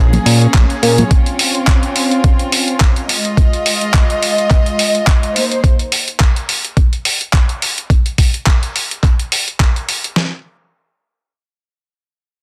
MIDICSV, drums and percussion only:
0, 0, Header, 1, 2, 480
1, 0, Start_track
1, 0, Tempo, 566038
1, 940, Time_signature, 4, 2, 24, 8
1, 10537, End_track
2, 0, Start_track
2, 0, Title_t, "Drums"
2, 110, Note_on_c, 9, 63, 88
2, 114, Note_on_c, 9, 64, 88
2, 115, Note_on_c, 9, 42, 34
2, 195, Note_off_c, 9, 63, 0
2, 199, Note_off_c, 9, 64, 0
2, 200, Note_off_c, 9, 42, 0
2, 222, Note_on_c, 9, 46, 105
2, 307, Note_off_c, 9, 46, 0
2, 353, Note_on_c, 9, 42, 36
2, 438, Note_off_c, 9, 42, 0
2, 459, Note_on_c, 9, 36, 110
2, 459, Note_on_c, 9, 39, 106
2, 462, Note_on_c, 9, 42, 56
2, 465, Note_on_c, 9, 63, 55
2, 544, Note_off_c, 9, 36, 0
2, 544, Note_off_c, 9, 39, 0
2, 547, Note_off_c, 9, 42, 0
2, 550, Note_off_c, 9, 63, 0
2, 594, Note_on_c, 9, 42, 34
2, 678, Note_off_c, 9, 42, 0
2, 703, Note_on_c, 9, 46, 92
2, 788, Note_off_c, 9, 46, 0
2, 832, Note_on_c, 9, 63, 86
2, 833, Note_on_c, 9, 64, 85
2, 834, Note_on_c, 9, 42, 35
2, 917, Note_off_c, 9, 63, 0
2, 918, Note_off_c, 9, 42, 0
2, 918, Note_off_c, 9, 64, 0
2, 940, Note_on_c, 9, 36, 112
2, 940, Note_on_c, 9, 42, 58
2, 1025, Note_off_c, 9, 36, 0
2, 1025, Note_off_c, 9, 42, 0
2, 1071, Note_on_c, 9, 42, 34
2, 1156, Note_off_c, 9, 42, 0
2, 1180, Note_on_c, 9, 46, 100
2, 1265, Note_off_c, 9, 46, 0
2, 1313, Note_on_c, 9, 42, 35
2, 1398, Note_off_c, 9, 42, 0
2, 1418, Note_on_c, 9, 39, 107
2, 1420, Note_on_c, 9, 36, 107
2, 1421, Note_on_c, 9, 42, 60
2, 1503, Note_off_c, 9, 39, 0
2, 1505, Note_off_c, 9, 36, 0
2, 1506, Note_off_c, 9, 42, 0
2, 1551, Note_on_c, 9, 42, 34
2, 1636, Note_off_c, 9, 42, 0
2, 1659, Note_on_c, 9, 46, 84
2, 1744, Note_off_c, 9, 46, 0
2, 1793, Note_on_c, 9, 42, 34
2, 1878, Note_off_c, 9, 42, 0
2, 1899, Note_on_c, 9, 42, 58
2, 1900, Note_on_c, 9, 36, 112
2, 1984, Note_off_c, 9, 42, 0
2, 1985, Note_off_c, 9, 36, 0
2, 2030, Note_on_c, 9, 42, 34
2, 2115, Note_off_c, 9, 42, 0
2, 2140, Note_on_c, 9, 46, 98
2, 2225, Note_off_c, 9, 46, 0
2, 2271, Note_on_c, 9, 42, 36
2, 2356, Note_off_c, 9, 42, 0
2, 2377, Note_on_c, 9, 39, 100
2, 2380, Note_on_c, 9, 36, 111
2, 2380, Note_on_c, 9, 42, 58
2, 2462, Note_off_c, 9, 39, 0
2, 2465, Note_off_c, 9, 36, 0
2, 2465, Note_off_c, 9, 42, 0
2, 2513, Note_on_c, 9, 42, 35
2, 2598, Note_off_c, 9, 42, 0
2, 2622, Note_on_c, 9, 46, 86
2, 2707, Note_off_c, 9, 46, 0
2, 2755, Note_on_c, 9, 42, 36
2, 2840, Note_off_c, 9, 42, 0
2, 2861, Note_on_c, 9, 36, 103
2, 2864, Note_on_c, 9, 42, 60
2, 2945, Note_off_c, 9, 36, 0
2, 2949, Note_off_c, 9, 42, 0
2, 2997, Note_on_c, 9, 42, 34
2, 3082, Note_off_c, 9, 42, 0
2, 3103, Note_on_c, 9, 46, 92
2, 3188, Note_off_c, 9, 46, 0
2, 3234, Note_on_c, 9, 42, 35
2, 3319, Note_off_c, 9, 42, 0
2, 3340, Note_on_c, 9, 39, 102
2, 3341, Note_on_c, 9, 36, 105
2, 3343, Note_on_c, 9, 42, 59
2, 3425, Note_off_c, 9, 39, 0
2, 3426, Note_off_c, 9, 36, 0
2, 3428, Note_off_c, 9, 42, 0
2, 3477, Note_on_c, 9, 42, 35
2, 3561, Note_off_c, 9, 42, 0
2, 3583, Note_on_c, 9, 46, 81
2, 3668, Note_off_c, 9, 46, 0
2, 3717, Note_on_c, 9, 42, 34
2, 3802, Note_off_c, 9, 42, 0
2, 3821, Note_on_c, 9, 36, 107
2, 3821, Note_on_c, 9, 39, 32
2, 3824, Note_on_c, 9, 42, 57
2, 3906, Note_off_c, 9, 36, 0
2, 3906, Note_off_c, 9, 39, 0
2, 3909, Note_off_c, 9, 42, 0
2, 3954, Note_on_c, 9, 42, 34
2, 4039, Note_off_c, 9, 42, 0
2, 4063, Note_on_c, 9, 46, 91
2, 4148, Note_off_c, 9, 46, 0
2, 4196, Note_on_c, 9, 42, 36
2, 4281, Note_off_c, 9, 42, 0
2, 4301, Note_on_c, 9, 36, 102
2, 4301, Note_on_c, 9, 39, 99
2, 4304, Note_on_c, 9, 42, 57
2, 4386, Note_off_c, 9, 36, 0
2, 4386, Note_off_c, 9, 39, 0
2, 4389, Note_off_c, 9, 42, 0
2, 4437, Note_on_c, 9, 42, 35
2, 4522, Note_off_c, 9, 42, 0
2, 4545, Note_on_c, 9, 46, 84
2, 4630, Note_off_c, 9, 46, 0
2, 4677, Note_on_c, 9, 42, 37
2, 4762, Note_off_c, 9, 42, 0
2, 4780, Note_on_c, 9, 36, 103
2, 4783, Note_on_c, 9, 42, 62
2, 4865, Note_off_c, 9, 36, 0
2, 4868, Note_off_c, 9, 42, 0
2, 4913, Note_on_c, 9, 42, 36
2, 4998, Note_off_c, 9, 42, 0
2, 5021, Note_on_c, 9, 46, 95
2, 5106, Note_off_c, 9, 46, 0
2, 5154, Note_on_c, 9, 42, 36
2, 5238, Note_off_c, 9, 42, 0
2, 5257, Note_on_c, 9, 39, 104
2, 5260, Note_on_c, 9, 36, 103
2, 5260, Note_on_c, 9, 42, 61
2, 5341, Note_off_c, 9, 39, 0
2, 5345, Note_off_c, 9, 36, 0
2, 5345, Note_off_c, 9, 42, 0
2, 5397, Note_on_c, 9, 42, 36
2, 5481, Note_off_c, 9, 42, 0
2, 5502, Note_on_c, 9, 46, 78
2, 5587, Note_off_c, 9, 46, 0
2, 5635, Note_on_c, 9, 42, 37
2, 5720, Note_off_c, 9, 42, 0
2, 5739, Note_on_c, 9, 36, 107
2, 5740, Note_on_c, 9, 42, 61
2, 5824, Note_off_c, 9, 36, 0
2, 5825, Note_off_c, 9, 42, 0
2, 5875, Note_on_c, 9, 42, 35
2, 5960, Note_off_c, 9, 42, 0
2, 5980, Note_on_c, 9, 46, 93
2, 6065, Note_off_c, 9, 46, 0
2, 6113, Note_on_c, 9, 42, 38
2, 6198, Note_off_c, 9, 42, 0
2, 6218, Note_on_c, 9, 39, 102
2, 6219, Note_on_c, 9, 36, 101
2, 6221, Note_on_c, 9, 42, 57
2, 6303, Note_off_c, 9, 39, 0
2, 6304, Note_off_c, 9, 36, 0
2, 6306, Note_off_c, 9, 42, 0
2, 6353, Note_on_c, 9, 42, 35
2, 6438, Note_off_c, 9, 42, 0
2, 6464, Note_on_c, 9, 46, 81
2, 6548, Note_off_c, 9, 46, 0
2, 6597, Note_on_c, 9, 42, 37
2, 6681, Note_off_c, 9, 42, 0
2, 6699, Note_on_c, 9, 36, 106
2, 6702, Note_on_c, 9, 42, 62
2, 6784, Note_off_c, 9, 36, 0
2, 6787, Note_off_c, 9, 42, 0
2, 6833, Note_on_c, 9, 42, 36
2, 6918, Note_off_c, 9, 42, 0
2, 6939, Note_on_c, 9, 36, 53
2, 6939, Note_on_c, 9, 46, 91
2, 7024, Note_off_c, 9, 36, 0
2, 7024, Note_off_c, 9, 46, 0
2, 7073, Note_on_c, 9, 42, 38
2, 7158, Note_off_c, 9, 42, 0
2, 7178, Note_on_c, 9, 39, 103
2, 7179, Note_on_c, 9, 36, 100
2, 7181, Note_on_c, 9, 42, 64
2, 7263, Note_off_c, 9, 36, 0
2, 7263, Note_off_c, 9, 39, 0
2, 7266, Note_off_c, 9, 42, 0
2, 7317, Note_on_c, 9, 42, 37
2, 7401, Note_off_c, 9, 42, 0
2, 7426, Note_on_c, 9, 46, 77
2, 7510, Note_off_c, 9, 46, 0
2, 7558, Note_on_c, 9, 42, 37
2, 7643, Note_off_c, 9, 42, 0
2, 7659, Note_on_c, 9, 36, 106
2, 7664, Note_on_c, 9, 39, 32
2, 7667, Note_on_c, 9, 42, 59
2, 7744, Note_off_c, 9, 36, 0
2, 7749, Note_off_c, 9, 39, 0
2, 7752, Note_off_c, 9, 42, 0
2, 7797, Note_on_c, 9, 42, 36
2, 7882, Note_off_c, 9, 42, 0
2, 7903, Note_on_c, 9, 46, 92
2, 7988, Note_off_c, 9, 46, 0
2, 8037, Note_on_c, 9, 42, 38
2, 8122, Note_off_c, 9, 42, 0
2, 8139, Note_on_c, 9, 36, 106
2, 8143, Note_on_c, 9, 39, 103
2, 8146, Note_on_c, 9, 42, 61
2, 8223, Note_off_c, 9, 36, 0
2, 8228, Note_off_c, 9, 39, 0
2, 8231, Note_off_c, 9, 42, 0
2, 8279, Note_on_c, 9, 42, 37
2, 8364, Note_off_c, 9, 42, 0
2, 8383, Note_on_c, 9, 46, 78
2, 8468, Note_off_c, 9, 46, 0
2, 8517, Note_on_c, 9, 42, 37
2, 8602, Note_off_c, 9, 42, 0
2, 8617, Note_on_c, 9, 38, 93
2, 8702, Note_off_c, 9, 38, 0
2, 10537, End_track
0, 0, End_of_file